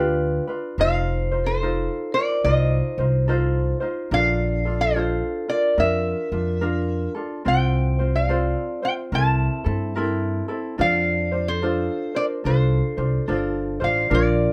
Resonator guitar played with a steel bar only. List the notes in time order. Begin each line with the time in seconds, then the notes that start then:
Already playing: D5
0.81 F5
1.46 C5
2.14 D5
2.44 D#5
4.14 F5
4.81 C5
5.49 D5
5.80 E5
7.48 G5
8.16 F5
8.85 G5
9.15 A5
10.05 G5
10.81 F5
11.48 C5
12.16 D5
12.46 C5
13.36 A#4
13.84 F5
14.14 D5